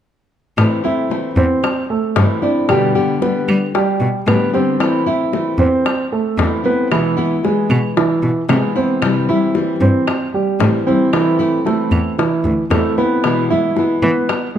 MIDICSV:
0, 0, Header, 1, 6, 480
1, 0, Start_track
1, 0, Key_signature, 0, "minor"
1, 0, Tempo, 527241
1, 529, Time_signature, 4, 2, 24, 8
1, 13277, End_track
2, 0, Start_track
2, 0, Title_t, "Grand piano"
2, 0, Program_c, 0, 0
2, 769, Note_on_c, 0, 64, 67
2, 771, Note_on_c, 0, 76, 71
2, 1163, Note_off_c, 0, 64, 0
2, 1164, Note_off_c, 0, 76, 0
2, 1248, Note_on_c, 0, 60, 68
2, 1252, Note_on_c, 0, 72, 69
2, 1642, Note_off_c, 0, 60, 0
2, 1645, Note_off_c, 0, 72, 0
2, 1729, Note_on_c, 0, 57, 59
2, 1731, Note_on_c, 0, 69, 59
2, 2123, Note_off_c, 0, 57, 0
2, 2124, Note_off_c, 0, 69, 0
2, 2208, Note_on_c, 0, 62, 63
2, 2212, Note_on_c, 0, 74, 63
2, 2406, Note_off_c, 0, 62, 0
2, 2408, Note_off_c, 0, 74, 0
2, 2452, Note_on_c, 0, 55, 74
2, 2456, Note_on_c, 0, 67, 74
2, 2845, Note_off_c, 0, 55, 0
2, 2847, Note_off_c, 0, 67, 0
2, 2930, Note_on_c, 0, 59, 66
2, 2932, Note_on_c, 0, 71, 60
2, 3324, Note_off_c, 0, 59, 0
2, 3326, Note_off_c, 0, 71, 0
2, 3413, Note_on_c, 0, 55, 67
2, 3416, Note_on_c, 0, 67, 68
2, 3806, Note_off_c, 0, 55, 0
2, 3808, Note_off_c, 0, 67, 0
2, 3894, Note_on_c, 0, 59, 60
2, 3898, Note_on_c, 0, 71, 66
2, 4090, Note_off_c, 0, 59, 0
2, 4092, Note_off_c, 0, 71, 0
2, 4134, Note_on_c, 0, 60, 66
2, 4137, Note_on_c, 0, 72, 68
2, 4527, Note_off_c, 0, 60, 0
2, 4528, Note_off_c, 0, 72, 0
2, 4614, Note_on_c, 0, 64, 64
2, 4617, Note_on_c, 0, 76, 65
2, 5007, Note_off_c, 0, 64, 0
2, 5009, Note_off_c, 0, 76, 0
2, 5094, Note_on_c, 0, 60, 71
2, 5097, Note_on_c, 0, 72, 75
2, 5487, Note_off_c, 0, 60, 0
2, 5489, Note_off_c, 0, 72, 0
2, 5574, Note_on_c, 0, 57, 66
2, 5577, Note_on_c, 0, 69, 59
2, 5967, Note_off_c, 0, 57, 0
2, 5969, Note_off_c, 0, 69, 0
2, 6058, Note_on_c, 0, 59, 68
2, 6060, Note_on_c, 0, 71, 69
2, 6253, Note_off_c, 0, 59, 0
2, 6254, Note_off_c, 0, 71, 0
2, 6300, Note_on_c, 0, 52, 75
2, 6303, Note_on_c, 0, 64, 76
2, 6690, Note_off_c, 0, 52, 0
2, 6692, Note_off_c, 0, 64, 0
2, 6775, Note_on_c, 0, 56, 62
2, 6779, Note_on_c, 0, 68, 62
2, 7168, Note_off_c, 0, 56, 0
2, 7170, Note_off_c, 0, 68, 0
2, 7257, Note_on_c, 0, 52, 68
2, 7259, Note_on_c, 0, 64, 70
2, 7649, Note_off_c, 0, 52, 0
2, 7650, Note_off_c, 0, 64, 0
2, 7735, Note_on_c, 0, 56, 63
2, 7738, Note_on_c, 0, 68, 59
2, 7931, Note_off_c, 0, 56, 0
2, 7933, Note_off_c, 0, 68, 0
2, 7978, Note_on_c, 0, 60, 62
2, 7980, Note_on_c, 0, 72, 64
2, 8369, Note_off_c, 0, 60, 0
2, 8371, Note_off_c, 0, 72, 0
2, 8458, Note_on_c, 0, 64, 68
2, 8459, Note_on_c, 0, 76, 69
2, 8849, Note_off_c, 0, 64, 0
2, 8850, Note_off_c, 0, 76, 0
2, 8936, Note_on_c, 0, 60, 68
2, 8939, Note_on_c, 0, 72, 67
2, 9328, Note_off_c, 0, 60, 0
2, 9330, Note_off_c, 0, 72, 0
2, 9413, Note_on_c, 0, 55, 59
2, 9415, Note_on_c, 0, 67, 60
2, 9806, Note_off_c, 0, 55, 0
2, 9808, Note_off_c, 0, 67, 0
2, 9892, Note_on_c, 0, 60, 69
2, 9894, Note_on_c, 0, 72, 67
2, 10089, Note_off_c, 0, 60, 0
2, 10090, Note_off_c, 0, 72, 0
2, 10135, Note_on_c, 0, 52, 69
2, 10138, Note_on_c, 0, 64, 74
2, 10527, Note_off_c, 0, 52, 0
2, 10529, Note_off_c, 0, 64, 0
2, 10613, Note_on_c, 0, 57, 62
2, 10616, Note_on_c, 0, 69, 62
2, 11006, Note_off_c, 0, 57, 0
2, 11008, Note_off_c, 0, 69, 0
2, 11093, Note_on_c, 0, 52, 65
2, 11095, Note_on_c, 0, 64, 67
2, 11485, Note_off_c, 0, 52, 0
2, 11487, Note_off_c, 0, 64, 0
2, 11573, Note_on_c, 0, 57, 65
2, 11576, Note_on_c, 0, 69, 63
2, 11769, Note_off_c, 0, 57, 0
2, 11771, Note_off_c, 0, 69, 0
2, 11814, Note_on_c, 0, 59, 72
2, 11817, Note_on_c, 0, 71, 68
2, 12206, Note_off_c, 0, 59, 0
2, 12208, Note_off_c, 0, 71, 0
2, 12293, Note_on_c, 0, 64, 70
2, 12294, Note_on_c, 0, 76, 66
2, 12685, Note_off_c, 0, 64, 0
2, 12686, Note_off_c, 0, 76, 0
2, 12772, Note_on_c, 0, 59, 72
2, 12775, Note_on_c, 0, 71, 71
2, 13164, Note_off_c, 0, 59, 0
2, 13166, Note_off_c, 0, 71, 0
2, 13250, Note_on_c, 0, 56, 60
2, 13277, Note_off_c, 0, 56, 0
2, 13277, End_track
3, 0, Start_track
3, 0, Title_t, "Nylon-string guitar"
3, 0, Program_c, 1, 24
3, 524, Note_on_c, 1, 52, 59
3, 532, Note_on_c, 1, 57, 66
3, 536, Note_on_c, 1, 60, 62
3, 539, Note_on_c, 1, 64, 63
3, 750, Note_off_c, 1, 64, 0
3, 757, Note_off_c, 1, 52, 0
3, 759, Note_off_c, 1, 60, 0
3, 761, Note_off_c, 1, 57, 0
3, 761, Note_on_c, 1, 64, 61
3, 769, Note_on_c, 1, 60, 60
3, 776, Note_on_c, 1, 57, 55
3, 995, Note_off_c, 1, 57, 0
3, 996, Note_off_c, 1, 64, 0
3, 999, Note_on_c, 1, 52, 47
3, 1000, Note_off_c, 1, 60, 0
3, 1006, Note_on_c, 1, 57, 46
3, 1009, Note_on_c, 1, 60, 44
3, 1014, Note_on_c, 1, 64, 48
3, 1471, Note_off_c, 1, 52, 0
3, 1474, Note_off_c, 1, 57, 0
3, 1476, Note_off_c, 1, 60, 0
3, 1479, Note_off_c, 1, 64, 0
3, 1965, Note_on_c, 1, 52, 47
3, 1971, Note_on_c, 1, 57, 47
3, 1974, Note_on_c, 1, 60, 46
3, 1979, Note_on_c, 1, 64, 49
3, 2193, Note_off_c, 1, 64, 0
3, 2198, Note_off_c, 1, 52, 0
3, 2201, Note_off_c, 1, 57, 0
3, 2203, Note_off_c, 1, 60, 0
3, 2204, Note_on_c, 1, 64, 62
3, 2212, Note_on_c, 1, 60, 56
3, 2220, Note_on_c, 1, 57, 49
3, 2437, Note_off_c, 1, 64, 0
3, 2441, Note_off_c, 1, 60, 0
3, 2446, Note_off_c, 1, 57, 0
3, 2446, Note_on_c, 1, 47, 66
3, 2453, Note_on_c, 1, 50, 68
3, 2455, Note_on_c, 1, 55, 65
3, 2460, Note_on_c, 1, 59, 66
3, 2462, Note_on_c, 1, 67, 70
3, 2675, Note_off_c, 1, 67, 0
3, 2679, Note_off_c, 1, 47, 0
3, 2681, Note_off_c, 1, 59, 0
3, 2682, Note_off_c, 1, 50, 0
3, 2683, Note_off_c, 1, 55, 0
3, 2686, Note_on_c, 1, 67, 64
3, 2692, Note_on_c, 1, 59, 60
3, 2698, Note_on_c, 1, 55, 55
3, 2702, Note_on_c, 1, 50, 49
3, 2917, Note_off_c, 1, 50, 0
3, 2919, Note_off_c, 1, 67, 0
3, 2921, Note_off_c, 1, 55, 0
3, 2922, Note_off_c, 1, 59, 0
3, 2928, Note_on_c, 1, 50, 47
3, 2932, Note_on_c, 1, 55, 50
3, 2936, Note_on_c, 1, 59, 48
3, 2943, Note_on_c, 1, 67, 53
3, 3400, Note_off_c, 1, 50, 0
3, 3402, Note_off_c, 1, 55, 0
3, 3404, Note_off_c, 1, 59, 0
3, 3404, Note_off_c, 1, 67, 0
3, 3889, Note_on_c, 1, 50, 50
3, 3894, Note_on_c, 1, 55, 47
3, 3899, Note_on_c, 1, 59, 48
3, 3904, Note_on_c, 1, 67, 50
3, 4117, Note_off_c, 1, 67, 0
3, 4121, Note_off_c, 1, 50, 0
3, 4123, Note_off_c, 1, 55, 0
3, 4124, Note_off_c, 1, 59, 0
3, 4128, Note_on_c, 1, 67, 58
3, 4135, Note_on_c, 1, 59, 53
3, 4142, Note_on_c, 1, 55, 55
3, 4144, Note_on_c, 1, 50, 49
3, 4360, Note_off_c, 1, 67, 0
3, 4364, Note_off_c, 1, 59, 0
3, 4365, Note_off_c, 1, 50, 0
3, 4367, Note_off_c, 1, 55, 0
3, 4369, Note_on_c, 1, 52, 61
3, 4375, Note_on_c, 1, 57, 65
3, 4379, Note_on_c, 1, 60, 65
3, 4383, Note_on_c, 1, 64, 73
3, 4599, Note_off_c, 1, 64, 0
3, 4601, Note_off_c, 1, 52, 0
3, 4604, Note_off_c, 1, 57, 0
3, 4606, Note_off_c, 1, 60, 0
3, 4610, Note_on_c, 1, 64, 68
3, 4617, Note_on_c, 1, 60, 57
3, 4622, Note_on_c, 1, 57, 53
3, 4840, Note_off_c, 1, 57, 0
3, 4841, Note_off_c, 1, 64, 0
3, 4845, Note_off_c, 1, 60, 0
3, 4846, Note_on_c, 1, 52, 44
3, 4851, Note_on_c, 1, 57, 45
3, 4857, Note_on_c, 1, 60, 49
3, 4861, Note_on_c, 1, 64, 54
3, 5319, Note_off_c, 1, 52, 0
3, 5322, Note_off_c, 1, 57, 0
3, 5324, Note_off_c, 1, 64, 0
3, 5325, Note_off_c, 1, 60, 0
3, 5808, Note_on_c, 1, 52, 43
3, 5811, Note_on_c, 1, 57, 48
3, 5818, Note_on_c, 1, 60, 52
3, 5822, Note_on_c, 1, 64, 48
3, 6031, Note_off_c, 1, 64, 0
3, 6039, Note_off_c, 1, 60, 0
3, 6041, Note_off_c, 1, 52, 0
3, 6042, Note_off_c, 1, 57, 0
3, 6042, Note_on_c, 1, 64, 59
3, 6050, Note_on_c, 1, 60, 55
3, 6056, Note_on_c, 1, 57, 52
3, 6278, Note_off_c, 1, 64, 0
3, 6282, Note_off_c, 1, 60, 0
3, 6285, Note_off_c, 1, 57, 0
3, 6289, Note_on_c, 1, 47, 68
3, 6293, Note_on_c, 1, 52, 66
3, 6297, Note_on_c, 1, 56, 65
3, 6300, Note_on_c, 1, 59, 66
3, 6304, Note_on_c, 1, 64, 63
3, 6514, Note_off_c, 1, 64, 0
3, 6521, Note_off_c, 1, 47, 0
3, 6521, Note_off_c, 1, 59, 0
3, 6523, Note_off_c, 1, 52, 0
3, 6525, Note_off_c, 1, 56, 0
3, 6525, Note_on_c, 1, 64, 62
3, 6532, Note_on_c, 1, 59, 59
3, 6534, Note_on_c, 1, 56, 59
3, 6540, Note_on_c, 1, 52, 52
3, 6756, Note_off_c, 1, 52, 0
3, 6759, Note_off_c, 1, 64, 0
3, 6763, Note_off_c, 1, 59, 0
3, 6764, Note_off_c, 1, 56, 0
3, 6767, Note_on_c, 1, 52, 44
3, 6776, Note_on_c, 1, 56, 48
3, 6780, Note_on_c, 1, 59, 45
3, 6783, Note_on_c, 1, 64, 46
3, 7240, Note_off_c, 1, 52, 0
3, 7245, Note_off_c, 1, 56, 0
3, 7247, Note_off_c, 1, 59, 0
3, 7248, Note_off_c, 1, 64, 0
3, 7732, Note_on_c, 1, 52, 47
3, 7738, Note_on_c, 1, 56, 48
3, 7743, Note_on_c, 1, 59, 48
3, 7747, Note_on_c, 1, 64, 46
3, 7959, Note_off_c, 1, 64, 0
3, 7963, Note_off_c, 1, 52, 0
3, 7966, Note_off_c, 1, 56, 0
3, 7966, Note_off_c, 1, 59, 0
3, 7970, Note_on_c, 1, 64, 63
3, 7977, Note_on_c, 1, 59, 56
3, 7981, Note_on_c, 1, 56, 49
3, 7985, Note_on_c, 1, 52, 49
3, 8202, Note_off_c, 1, 52, 0
3, 8202, Note_off_c, 1, 64, 0
3, 8205, Note_off_c, 1, 59, 0
3, 8207, Note_off_c, 1, 56, 0
3, 8211, Note_on_c, 1, 48, 68
3, 8213, Note_on_c, 1, 52, 60
3, 8220, Note_on_c, 1, 55, 68
3, 8223, Note_on_c, 1, 60, 68
3, 8224, Note_on_c, 1, 64, 66
3, 8442, Note_off_c, 1, 48, 0
3, 8443, Note_off_c, 1, 52, 0
3, 8444, Note_off_c, 1, 64, 0
3, 8447, Note_off_c, 1, 55, 0
3, 8449, Note_off_c, 1, 60, 0
3, 8454, Note_on_c, 1, 64, 65
3, 8460, Note_on_c, 1, 60, 59
3, 8464, Note_on_c, 1, 55, 60
3, 8470, Note_on_c, 1, 52, 51
3, 8684, Note_off_c, 1, 52, 0
3, 8684, Note_off_c, 1, 64, 0
3, 8687, Note_off_c, 1, 60, 0
3, 8689, Note_off_c, 1, 55, 0
3, 8695, Note_on_c, 1, 52, 45
3, 8699, Note_on_c, 1, 55, 46
3, 8703, Note_on_c, 1, 60, 53
3, 8706, Note_on_c, 1, 64, 55
3, 9164, Note_off_c, 1, 52, 0
3, 9166, Note_off_c, 1, 55, 0
3, 9168, Note_off_c, 1, 60, 0
3, 9170, Note_off_c, 1, 64, 0
3, 9653, Note_on_c, 1, 52, 40
3, 9660, Note_on_c, 1, 55, 44
3, 9663, Note_on_c, 1, 60, 49
3, 9667, Note_on_c, 1, 64, 57
3, 9883, Note_off_c, 1, 52, 0
3, 9883, Note_off_c, 1, 64, 0
3, 9886, Note_off_c, 1, 55, 0
3, 9888, Note_off_c, 1, 60, 0
3, 9894, Note_on_c, 1, 64, 56
3, 9900, Note_on_c, 1, 60, 56
3, 9904, Note_on_c, 1, 55, 51
3, 9911, Note_on_c, 1, 52, 48
3, 10123, Note_off_c, 1, 52, 0
3, 10123, Note_off_c, 1, 64, 0
3, 10126, Note_off_c, 1, 60, 0
3, 10128, Note_off_c, 1, 55, 0
3, 10134, Note_on_c, 1, 52, 67
3, 10140, Note_on_c, 1, 57, 68
3, 10145, Note_on_c, 1, 60, 70
3, 10148, Note_on_c, 1, 64, 69
3, 10358, Note_off_c, 1, 64, 0
3, 10363, Note_off_c, 1, 52, 0
3, 10366, Note_off_c, 1, 57, 0
3, 10367, Note_off_c, 1, 60, 0
3, 10369, Note_on_c, 1, 64, 66
3, 10377, Note_on_c, 1, 60, 61
3, 10384, Note_on_c, 1, 57, 57
3, 10601, Note_off_c, 1, 57, 0
3, 10601, Note_off_c, 1, 64, 0
3, 10605, Note_off_c, 1, 60, 0
3, 10606, Note_on_c, 1, 52, 46
3, 10612, Note_on_c, 1, 57, 52
3, 10617, Note_on_c, 1, 60, 49
3, 10621, Note_on_c, 1, 64, 51
3, 11079, Note_off_c, 1, 52, 0
3, 11082, Note_off_c, 1, 57, 0
3, 11084, Note_off_c, 1, 60, 0
3, 11087, Note_off_c, 1, 64, 0
3, 11571, Note_on_c, 1, 52, 43
3, 11576, Note_on_c, 1, 57, 53
3, 11582, Note_on_c, 1, 60, 47
3, 11585, Note_on_c, 1, 64, 48
3, 11801, Note_off_c, 1, 52, 0
3, 11803, Note_off_c, 1, 64, 0
3, 11804, Note_off_c, 1, 57, 0
3, 11807, Note_off_c, 1, 60, 0
3, 11814, Note_on_c, 1, 64, 63
3, 11821, Note_on_c, 1, 60, 53
3, 11827, Note_on_c, 1, 57, 47
3, 12043, Note_off_c, 1, 64, 0
3, 12046, Note_off_c, 1, 60, 0
3, 12049, Note_off_c, 1, 57, 0
3, 12055, Note_on_c, 1, 47, 65
3, 12060, Note_on_c, 1, 52, 66
3, 12064, Note_on_c, 1, 56, 68
3, 12066, Note_on_c, 1, 59, 70
3, 12070, Note_on_c, 1, 64, 65
3, 12283, Note_off_c, 1, 47, 0
3, 12284, Note_off_c, 1, 64, 0
3, 12285, Note_off_c, 1, 52, 0
3, 12287, Note_off_c, 1, 56, 0
3, 12289, Note_off_c, 1, 59, 0
3, 12294, Note_on_c, 1, 64, 73
3, 12302, Note_on_c, 1, 59, 56
3, 12303, Note_on_c, 1, 56, 57
3, 12310, Note_on_c, 1, 52, 52
3, 12523, Note_off_c, 1, 52, 0
3, 12523, Note_off_c, 1, 64, 0
3, 12526, Note_off_c, 1, 59, 0
3, 12527, Note_off_c, 1, 56, 0
3, 12534, Note_on_c, 1, 52, 47
3, 12541, Note_on_c, 1, 56, 52
3, 12545, Note_on_c, 1, 59, 48
3, 12550, Note_on_c, 1, 64, 54
3, 13002, Note_off_c, 1, 52, 0
3, 13003, Note_off_c, 1, 56, 0
3, 13005, Note_off_c, 1, 59, 0
3, 13008, Note_off_c, 1, 64, 0
3, 13277, End_track
4, 0, Start_track
4, 0, Title_t, "Cello"
4, 0, Program_c, 2, 42
4, 524, Note_on_c, 2, 45, 81
4, 597, Note_off_c, 2, 45, 0
4, 1245, Note_on_c, 2, 40, 86
4, 1317, Note_off_c, 2, 40, 0
4, 1971, Note_on_c, 2, 43, 82
4, 2044, Note_off_c, 2, 43, 0
4, 3171, Note_on_c, 2, 55, 85
4, 3244, Note_off_c, 2, 55, 0
4, 3646, Note_on_c, 2, 47, 62
4, 3719, Note_off_c, 2, 47, 0
4, 3887, Note_on_c, 2, 45, 82
4, 3960, Note_off_c, 2, 45, 0
4, 5085, Note_on_c, 2, 40, 81
4, 5158, Note_off_c, 2, 40, 0
4, 5808, Note_on_c, 2, 40, 84
4, 5881, Note_off_c, 2, 40, 0
4, 7011, Note_on_c, 2, 47, 85
4, 7084, Note_off_c, 2, 47, 0
4, 7491, Note_on_c, 2, 47, 59
4, 7563, Note_off_c, 2, 47, 0
4, 7731, Note_on_c, 2, 48, 85
4, 7804, Note_off_c, 2, 48, 0
4, 8930, Note_on_c, 2, 43, 86
4, 9003, Note_off_c, 2, 43, 0
4, 9649, Note_on_c, 2, 45, 83
4, 9722, Note_off_c, 2, 45, 0
4, 10851, Note_on_c, 2, 40, 79
4, 10924, Note_off_c, 2, 40, 0
4, 11331, Note_on_c, 2, 38, 66
4, 11404, Note_off_c, 2, 38, 0
4, 11571, Note_on_c, 2, 40, 86
4, 11643, Note_off_c, 2, 40, 0
4, 12768, Note_on_c, 2, 52, 84
4, 12841, Note_off_c, 2, 52, 0
4, 13277, End_track
5, 0, Start_track
5, 0, Title_t, "Muted nylon-string guitar strokes"
5, 1481, Note_on_c, 9, 29, 57
5, 1573, Note_off_c, 9, 29, 0
5, 3408, Note_on_c, 9, 29, 58
5, 3499, Note_off_c, 9, 29, 0
5, 5329, Note_on_c, 9, 29, 54
5, 5420, Note_off_c, 9, 29, 0
5, 7251, Note_on_c, 9, 29, 52
5, 7342, Note_off_c, 9, 29, 0
5, 9176, Note_on_c, 9, 29, 53
5, 9267, Note_off_c, 9, 29, 0
5, 11092, Note_on_c, 9, 29, 57
5, 11183, Note_off_c, 9, 29, 0
5, 13011, Note_on_c, 9, 29, 51
5, 13102, Note_off_c, 9, 29, 0
5, 13277, End_track
6, 0, Start_track
6, 0, Title_t, "Drums"
6, 526, Note_on_c, 9, 75, 54
6, 528, Note_on_c, 9, 60, 68
6, 617, Note_off_c, 9, 75, 0
6, 619, Note_off_c, 9, 60, 0
6, 1013, Note_on_c, 9, 60, 49
6, 1104, Note_off_c, 9, 60, 0
6, 1490, Note_on_c, 9, 75, 58
6, 1493, Note_on_c, 9, 60, 62
6, 1581, Note_off_c, 9, 75, 0
6, 1584, Note_off_c, 9, 60, 0
6, 1967, Note_on_c, 9, 60, 72
6, 1967, Note_on_c, 9, 61, 80
6, 2058, Note_off_c, 9, 60, 0
6, 2058, Note_off_c, 9, 61, 0
6, 2447, Note_on_c, 9, 60, 65
6, 2450, Note_on_c, 9, 75, 56
6, 2538, Note_off_c, 9, 60, 0
6, 2541, Note_off_c, 9, 75, 0
6, 2689, Note_on_c, 9, 60, 31
6, 2780, Note_off_c, 9, 60, 0
6, 2932, Note_on_c, 9, 60, 48
6, 3023, Note_off_c, 9, 60, 0
6, 3174, Note_on_c, 9, 75, 60
6, 3265, Note_off_c, 9, 75, 0
6, 3413, Note_on_c, 9, 60, 63
6, 3504, Note_off_c, 9, 60, 0
6, 3655, Note_on_c, 9, 60, 33
6, 3746, Note_off_c, 9, 60, 0
6, 3894, Note_on_c, 9, 60, 65
6, 3894, Note_on_c, 9, 61, 82
6, 3898, Note_on_c, 9, 75, 63
6, 3985, Note_off_c, 9, 60, 0
6, 3985, Note_off_c, 9, 61, 0
6, 3989, Note_off_c, 9, 75, 0
6, 4134, Note_on_c, 9, 60, 32
6, 4225, Note_off_c, 9, 60, 0
6, 4373, Note_on_c, 9, 60, 61
6, 4379, Note_on_c, 9, 75, 52
6, 4464, Note_off_c, 9, 60, 0
6, 4470, Note_off_c, 9, 75, 0
6, 4855, Note_on_c, 9, 60, 50
6, 4946, Note_off_c, 9, 60, 0
6, 5334, Note_on_c, 9, 60, 62
6, 5334, Note_on_c, 9, 75, 62
6, 5425, Note_off_c, 9, 60, 0
6, 5425, Note_off_c, 9, 75, 0
6, 5817, Note_on_c, 9, 60, 68
6, 5817, Note_on_c, 9, 61, 80
6, 5908, Note_off_c, 9, 60, 0
6, 5908, Note_off_c, 9, 61, 0
6, 6295, Note_on_c, 9, 75, 58
6, 6296, Note_on_c, 9, 60, 63
6, 6386, Note_off_c, 9, 75, 0
6, 6387, Note_off_c, 9, 60, 0
6, 6538, Note_on_c, 9, 60, 29
6, 6630, Note_off_c, 9, 60, 0
6, 6779, Note_on_c, 9, 60, 48
6, 6870, Note_off_c, 9, 60, 0
6, 7017, Note_on_c, 9, 75, 58
6, 7108, Note_off_c, 9, 75, 0
6, 7258, Note_on_c, 9, 60, 62
6, 7349, Note_off_c, 9, 60, 0
6, 7494, Note_on_c, 9, 60, 32
6, 7585, Note_off_c, 9, 60, 0
6, 7731, Note_on_c, 9, 60, 67
6, 7731, Note_on_c, 9, 61, 80
6, 7738, Note_on_c, 9, 75, 59
6, 7823, Note_off_c, 9, 60, 0
6, 7823, Note_off_c, 9, 61, 0
6, 7829, Note_off_c, 9, 75, 0
6, 7974, Note_on_c, 9, 60, 30
6, 8065, Note_off_c, 9, 60, 0
6, 8210, Note_on_c, 9, 75, 55
6, 8215, Note_on_c, 9, 60, 63
6, 8301, Note_off_c, 9, 75, 0
6, 8306, Note_off_c, 9, 60, 0
6, 8693, Note_on_c, 9, 60, 48
6, 8785, Note_off_c, 9, 60, 0
6, 9172, Note_on_c, 9, 75, 60
6, 9173, Note_on_c, 9, 60, 66
6, 9263, Note_off_c, 9, 75, 0
6, 9264, Note_off_c, 9, 60, 0
6, 9654, Note_on_c, 9, 60, 70
6, 9654, Note_on_c, 9, 61, 81
6, 9745, Note_off_c, 9, 60, 0
6, 9745, Note_off_c, 9, 61, 0
6, 10133, Note_on_c, 9, 75, 54
6, 10136, Note_on_c, 9, 60, 66
6, 10224, Note_off_c, 9, 75, 0
6, 10227, Note_off_c, 9, 60, 0
6, 10377, Note_on_c, 9, 60, 32
6, 10468, Note_off_c, 9, 60, 0
6, 10621, Note_on_c, 9, 60, 48
6, 10712, Note_off_c, 9, 60, 0
6, 10851, Note_on_c, 9, 75, 56
6, 10942, Note_off_c, 9, 75, 0
6, 11100, Note_on_c, 9, 60, 61
6, 11191, Note_off_c, 9, 60, 0
6, 11333, Note_on_c, 9, 60, 30
6, 11425, Note_off_c, 9, 60, 0
6, 11573, Note_on_c, 9, 60, 68
6, 11573, Note_on_c, 9, 61, 85
6, 11575, Note_on_c, 9, 75, 54
6, 11664, Note_off_c, 9, 60, 0
6, 11664, Note_off_c, 9, 61, 0
6, 11666, Note_off_c, 9, 75, 0
6, 11815, Note_on_c, 9, 60, 30
6, 11906, Note_off_c, 9, 60, 0
6, 12051, Note_on_c, 9, 75, 56
6, 12053, Note_on_c, 9, 60, 64
6, 12142, Note_off_c, 9, 75, 0
6, 12144, Note_off_c, 9, 60, 0
6, 12532, Note_on_c, 9, 60, 47
6, 12623, Note_off_c, 9, 60, 0
6, 13011, Note_on_c, 9, 75, 57
6, 13013, Note_on_c, 9, 60, 63
6, 13102, Note_off_c, 9, 75, 0
6, 13104, Note_off_c, 9, 60, 0
6, 13277, End_track
0, 0, End_of_file